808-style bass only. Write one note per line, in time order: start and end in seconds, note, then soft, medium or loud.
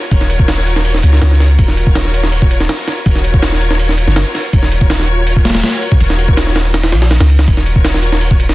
0.11 1.03 D#1 loud
1.04 1.20 C#2 medium
1.22 1.57 C#2 medium
1.59 2.68 D#1 medium
3.06 4.06 D#1 loud
4.08 4.24 F#1 medium
4.53 5.62 D#1 medium
6.01 6.94 D#1 loud
6.93 7.19 A#1 loud
7.21 7.47 C#2 medium
7.48 8.55 D#1 loud